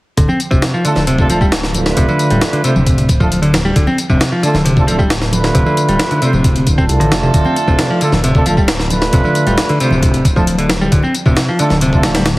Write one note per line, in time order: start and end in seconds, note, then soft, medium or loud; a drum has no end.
0.17 0.26 D1 medium
0.17 0.28 D3 medium
0.17 kick loud
0.17 closed hi-hat medium
0.17 tambourine soft
0.28 0.39 C4 medium
0.28 tambourine soft
0.28 high conga medium
0.40 closed hi-hat medium
0.40 tambourine medium
0.51 0.60 D1 medium
0.51 0.72 C3 medium
0.51 kick medium
0.51 tambourine soft
0.62 snare loud
0.62 closed hi-hat medium
0.62 tambourine soft
0.62 high conga medium
0.74 0.84 F3 medium
0.74 tambourine soft
0.85 1.06 D3 medium
0.85 0.99 A3 medium
0.85 0.99 D4 medium
0.85 0.99 F4 medium
0.85 0.99 A4 medium
0.85 closed hi-hat medium
0.85 tambourine medium
0.95 1.25 D1 loud
0.95 snare soft
0.95 tambourine soft
0.95 high conga medium
1.07 1.28 C3 medium
1.07 closed hi-hat medium
1.07 tambourine soft
1.18 1.27 A3 medium
1.18 1.27 D4 medium
1.18 1.27 F4 medium
1.18 1.27 A4 medium
1.18 kick medium
1.18 tambourine soft
1.29 1.92 D1 medium
1.29 1.40 F3 medium
1.29 1.43 A3 medium
1.29 1.43 D4 medium
1.29 1.43 F4 medium
1.29 1.43 A4 medium
1.29 closed hi-hat medium
1.29 tambourine medium
1.29 high conga medium
1.41 1.51 G3 medium
1.41 kick medium
1.41 tambourine soft
1.52 snare loud
1.52 closed hi-hat medium
1.52 tambourine soft
1.63 snare soft
1.63 tambourine soft
1.74 2.61 A3 medium
1.74 2.61 D4 medium
1.74 2.61 F4 medium
1.74 2.61 B4 medium
1.74 closed hi-hat medium
1.74 tambourine medium
1.74 high conga medium
1.86 snare medium
1.86 tambourine soft
1.97 2.05 D1 medium
1.97 2.07 C3 medium
1.97 kick loud
1.97 closed hi-hat medium
1.97 tambourine soft
2.09 2.30 D3 medium
2.09 tambourine soft
2.09 high conga medium
2.19 closed hi-hat medium
2.19 tambourine medium
2.30 2.39 D1 medium
2.30 2.41 G3 medium
2.30 closed hi-hat soft
2.30 tambourine soft
2.41 snare loud
2.41 closed hi-hat medium
2.41 tambourine soft
2.41 high conga medium
2.53 2.63 D3 medium
2.53 closed hi-hat soft
2.53 tambourine soft
2.64 3.08 C3 medium
2.64 2.73 A3 medium
2.64 2.73 D4 medium
2.64 2.73 F4 medium
2.64 2.73 C5 medium
2.64 closed hi-hat medium
2.64 tambourine medium
2.75 3.04 D1 loud
2.75 tambourine soft
2.75 high conga medium
2.86 kick loud
2.86 closed hi-hat medium
2.86 tambourine soft
2.98 closed hi-hat soft
2.98 tambourine soft
3.08 3.72 D1 medium
3.08 kick medium
3.08 closed hi-hat medium
3.08 tambourine medium
3.08 high conga medium
3.20 3.41 F3 medium
3.20 3.29 A3 medium
3.20 3.29 D4 medium
3.20 3.29 F4 medium
3.20 3.29 A4 medium
3.20 kick medium
3.20 tambourine soft
3.31 closed hi-hat medium
3.31 tambourine soft
3.42 3.52 D3 medium
3.42 closed hi-hat soft
3.42 tambourine soft
3.53 snare loud
3.53 closed hi-hat medium
3.53 tambourine medium
3.53 high conga medium
3.65 3.75 G3 medium
3.65 tambourine soft
3.76 3.84 D1 medium
3.76 3.86 D3 medium
3.76 kick loud
3.76 closed hi-hat medium
3.76 tambourine soft
3.87 3.97 C4 medium
3.87 tambourine soft
3.87 high conga medium
3.98 closed hi-hat medium
3.98 tambourine medium
4.10 4.18 D1 medium
4.10 4.31 C3 medium
4.10 kick medium
4.10 tambourine soft
4.20 snare loud
4.20 closed hi-hat medium
4.20 tambourine soft
4.20 high conga medium
4.32 4.42 F3 medium
4.32 tambourine soft
4.43 4.64 D3 medium
4.43 4.57 A3 medium
4.43 4.57 D4 medium
4.43 4.57 F4 medium
4.43 4.57 A4 medium
4.43 closed hi-hat medium
4.43 tambourine medium
4.54 4.83 D1 loud
4.54 snare soft
4.54 tambourine soft
4.54 high conga medium
4.65 4.86 C3 medium
4.65 closed hi-hat medium
4.65 tambourine soft
4.77 4.85 A3 medium
4.77 4.85 D4 medium
4.77 4.85 F4 medium
4.77 4.85 A4 medium
4.77 kick medium
4.77 tambourine soft
4.87 5.50 D1 medium
4.87 4.98 F3 medium
4.87 5.01 A3 medium
4.87 5.01 D4 medium
4.87 5.01 F4 medium
4.87 5.01 A4 medium
4.87 closed hi-hat medium
4.87 tambourine medium
4.87 high conga medium
4.99 5.09 G3 medium
4.99 kick medium
4.99 tambourine soft
5.10 snare loud
5.10 closed hi-hat medium
5.10 tambourine soft
5.22 snare soft
5.22 tambourine soft
5.32 6.19 A3 medium
5.32 6.19 D4 medium
5.32 6.19 F4 medium
5.32 6.19 B4 medium
5.32 closed hi-hat medium
5.32 tambourine medium
5.32 high conga medium
5.44 snare soft
5.44 tambourine soft
5.55 5.63 D1 medium
5.55 5.65 C3 medium
5.55 kick loud
5.55 closed hi-hat medium
5.55 tambourine soft
5.66 5.88 D3 medium
5.66 tambourine soft
5.66 high conga medium
5.77 closed hi-hat medium
5.77 tambourine medium
5.88 5.97 D1 medium
5.88 5.99 G3 medium
5.88 closed hi-hat soft
5.88 tambourine soft
5.99 snare loud
5.99 closed hi-hat medium
5.99 tambourine soft
5.99 high conga medium
6.11 6.21 D3 medium
6.11 closed hi-hat soft
6.11 tambourine soft
6.22 6.66 C3 medium
6.22 6.31 A3 medium
6.22 6.31 D4 medium
6.22 6.31 F4 medium
6.22 6.31 C5 medium
6.22 closed hi-hat medium
6.22 tambourine medium
6.33 6.62 D1 loud
6.33 tambourine soft
6.33 high conga medium
6.44 kick loud
6.44 closed hi-hat medium
6.44 tambourine soft
6.56 closed hi-hat soft
6.56 tambourine soft
6.67 6.88 D1 medium
6.67 kick medium
6.67 closed hi-hat medium
6.67 tambourine medium
6.67 high conga medium
6.78 7.99 A3 medium
6.78 6.84 C4 medium
6.78 7.99 D4 medium
6.78 7.99 F4 medium
6.78 7.99 A4 loud
6.78 kick medium
6.78 tambourine soft
6.89 6.98 C2 medium
6.89 closed hi-hat medium
6.89 tambourine soft
7.00 7.09 A1 medium
7.00 7.10 D3 loud
7.00 closed hi-hat soft
7.00 tambourine soft
7.11 7.28 F1 medium
7.11 snare loud
7.11 closed hi-hat medium
7.11 tambourine medium
7.11 high conga medium
7.23 7.33 C3 medium
7.23 tambourine soft
7.34 7.43 D1 medium
7.34 7.44 D3 medium
7.34 kick loud
7.34 closed hi-hat medium
7.34 tambourine soft
7.45 7.55 C4 medium
7.45 tambourine soft
7.45 high conga medium
7.56 closed hi-hat medium
7.56 tambourine medium
7.68 7.76 D1 medium
7.68 7.89 C3 medium
7.68 kick medium
7.68 tambourine soft
7.79 snare loud
7.79 closed hi-hat medium
7.79 tambourine soft
7.79 high conga medium
7.90 8.00 F3 medium
7.90 tambourine soft
8.01 8.23 D3 medium
8.01 8.15 A3 medium
8.01 8.15 D4 medium
8.01 8.15 F4 medium
8.01 8.15 A4 medium
8.01 closed hi-hat medium
8.01 tambourine medium
8.12 8.41 D1 loud
8.12 snare soft
8.12 tambourine soft
8.12 high conga medium
8.24 8.45 C3 medium
8.24 closed hi-hat medium
8.24 tambourine soft
8.35 8.43 A3 medium
8.35 8.43 D4 medium
8.35 8.43 F4 medium
8.35 8.43 A4 medium
8.35 kick medium
8.35 tambourine soft
8.46 9.09 D1 medium
8.46 8.56 F3 medium
8.46 8.60 A3 medium
8.46 8.60 D4 medium
8.46 8.60 F4 medium
8.46 8.60 A4 medium
8.46 closed hi-hat medium
8.46 tambourine medium
8.46 high conga medium
8.46 low conga medium
8.57 8.67 G3 medium
8.57 kick medium
8.57 tambourine soft
8.68 snare loud
8.68 closed hi-hat medium
8.68 tambourine soft
8.79 snare soft
8.79 tambourine soft
8.90 9.78 A3 medium
8.90 9.78 D4 medium
8.90 9.78 F4 medium
8.90 9.78 B4 medium
8.90 closed hi-hat medium
8.90 tambourine medium
8.90 high conga medium
9.02 snare medium
9.02 tambourine soft
9.13 9.22 D1 medium
9.13 9.24 C3 medium
9.13 kick loud
9.13 closed hi-hat medium
9.13 tambourine soft
9.24 9.46 D3 medium
9.24 tambourine soft
9.24 high conga medium
9.35 closed hi-hat medium
9.35 tambourine medium
9.47 9.55 D1 medium
9.47 9.57 G3 medium
9.47 closed hi-hat soft
9.47 tambourine soft
9.58 snare loud
9.58 closed hi-hat medium
9.58 tambourine soft
9.58 high conga medium
9.69 9.79 D3 medium
9.69 closed hi-hat soft
9.69 tambourine soft
9.80 10.24 C3 medium
9.80 9.89 A3 medium
9.80 9.89 D4 medium
9.80 9.89 F4 medium
9.80 9.89 C5 medium
9.80 closed hi-hat medium
9.80 tambourine medium
9.90 10.21 D1 loud
9.90 tambourine soft
9.90 high conga medium
10.02 kick loud
10.02 closed hi-hat medium
10.02 tambourine soft
10.14 closed hi-hat soft
10.14 tambourine soft
10.25 10.88 D1 medium
10.25 kick medium
10.25 closed hi-hat medium
10.25 tambourine medium
10.25 high conga medium
10.25 low conga medium
10.36 10.58 F3 medium
10.36 10.45 A3 medium
10.36 10.45 D4 medium
10.36 10.45 F4 medium
10.36 10.45 A4 medium
10.36 kick medium
10.36 tambourine soft
10.47 closed hi-hat medium
10.47 tambourine soft
10.58 10.69 D3 medium
10.58 closed hi-hat soft
10.58 tambourine soft
10.69 snare loud
10.69 closed hi-hat medium
10.69 tambourine medium
10.69 high conga medium
10.81 10.91 G3 medium
10.81 tambourine soft
10.92 11.01 D1 loud
10.92 11.02 D3 medium
10.92 kick loud
10.92 closed hi-hat medium
10.92 tambourine soft
11.03 11.13 C4 medium
11.03 tambourine soft
11.03 high conga medium
11.15 closed hi-hat medium
11.15 tambourine medium
11.26 11.34 D1 medium
11.26 11.47 C3 medium
11.26 kick medium
11.26 tambourine soft
11.35 snare loud
11.35 closed hi-hat medium
11.35 tambourine soft
11.35 high conga medium
11.48 11.58 F3 medium
11.48 tambourine soft
11.59 11.81 D3 medium
11.59 11.73 A3 medium
11.59 11.73 D4 medium
11.59 11.73 F4 medium
11.59 11.73 A4 medium
11.59 closed hi-hat medium
11.59 tambourine medium
11.70 12.00 D1 loud
11.70 snare soft
11.70 tambourine soft
11.70 high conga medium
11.81 12.03 C3 medium
11.81 closed hi-hat medium
11.81 tambourine soft
11.93 12.02 A3 medium
11.93 12.01 D4 medium
11.93 12.02 F4 medium
11.93 12.02 A4 medium
11.93 kick medium
11.93 tambourine soft
12.03 12.39 D1 medium
12.03 12.14 F3 medium
12.03 12.18 A3 medium
12.03 12.18 D4 medium
12.03 12.18 F4 medium
12.03 12.18 A4 medium
12.03 snare loud
12.03 closed hi-hat medium
12.03 tambourine medium
12.03 high conga medium
12.03 low conga medium
12.15 12.26 G3 medium
12.15 snare loud
12.15 closed hi-hat medium
12.15 tambourine soft
12.26 snare loud
12.26 closed hi-hat medium
12.26 tambourine soft